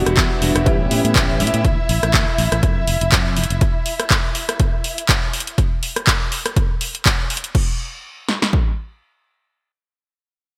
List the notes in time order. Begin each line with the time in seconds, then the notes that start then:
Already playing: G3 B3 D4 E4 F#4 E5
0.05 E1 B3 D4 F#4, cross-stick, closed hi-hat
0.16 E2 G3 B3 D4 F#4, kick, clap, closed hi-hat
0.30 B3 D4 F#4
0.41 E1 G3 B3 D4 F#4, open hi-hat
0.55 E1 B3 D4 F#4, cross-stick, closed hi-hat
0.65 A1 E3 G3 B3 C#4 E4 G4, kick, closed hi-hat
0.79 B3 C#4 G4
0.90 A2 E3 B3 C#4 G4, open hi-hat
1.04 A2, closed hi-hat
1.15 A1 E3 B3 C#4 G4, kick, clap, closed hi-hat
1.39 A2 E3 B3 C#4 G4, open hi-hat
1.47 closed hi-hat
1.53 A2 B3 C#4 G4, closed hi-hat
1.65 D2, kick, closed hi-hat
1.89 A1, open hi-hat
2.03 A1, cross-stick, closed hi-hat
2.14 D2, kick, clap, closed hi-hat
2.38 A1, open hi-hat
2.52 A1, cross-stick, closed hi-hat
2.63 F2, kick, closed hi-hat
2.87 F1, open hi-hat
3.01 F1, closed hi-hat
3.12 F2, kick, clap, closed hi-hat
3.36 F1, open hi-hat
3.44 closed hi-hat
3.50 F1, closed hi-hat
3.61 kick, closed hi-hat
3.86 open hi-hat
4.00 cross-stick, closed hi-hat
4.10 kick, clap, closed hi-hat
4.35 open hi-hat
4.49 cross-stick, closed hi-hat
4.60 kick, closed hi-hat
4.84 open hi-hat
4.98 closed hi-hat
5.09 kick, clap, closed hi-hat
5.33 open hi-hat
5.40 closed hi-hat
5.47 closed hi-hat
5.58 kick, closed hi-hat
5.83 open hi-hat
5.96 cross-stick, closed hi-hat
6.07 kick, clap, closed hi-hat
6.32 open hi-hat
6.46 cross-stick, closed hi-hat
6.56 kick, closed hi-hat
6.81 open hi-hat
6.95 closed hi-hat
7.06 kick, clap, open hi-hat
7.30 open hi-hat
7.37 closed hi-hat
7.44 closed hi-hat
7.55 kick, crash
8.29 snare
8.42 snare
8.53 kick